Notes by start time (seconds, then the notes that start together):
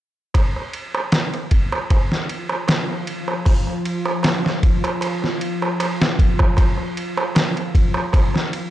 0.34 F3 F4, kick, ride, darbuka tek
0.56 darbuka tek
0.73 ride
0.95 darbuka tek
1.12 snare, ride, darbuka tek
1.34 ride, darbuka tek
1.51 kick, ride
1.72 darbuka tek
1.90 kick, ride, darbuka tek
2.11 snare, darbuka tek
2.29 ride
2.49 darbuka tek
2.68 snare, ride, darbuka tek
2.89 darbuka tek
3.07 ride
3.28 darbuka tek
3.45 kick, open hi-hat, darbuka tek
3.67 darbuka tek
3.85 ride
4.05 darbuka tek
4.23 snare, ride, darbuka tek
4.44 snare, darbuka tek
4.63 kick, ride
4.84 ride, darbuka tek
5.01 ride, darbuka tek
5.22 snare, darbuka tek
5.41 ride
5.62 darbuka tek
5.80 ride, darbuka tek
6.01 snare, darbuka tek
6.19 kick, ride
6.39 kick, darbuka tek
6.57 kick, ride, darbuka tek
6.77 darbuka tek
6.97 ride
7.17 darbuka tek
7.35 snare, ride, darbuka tek
7.56 ride, darbuka tek
7.75 kick, ride
7.94 darbuka tek
8.13 kick, ride, darbuka tek
8.34 snare, darbuka tek
8.53 ride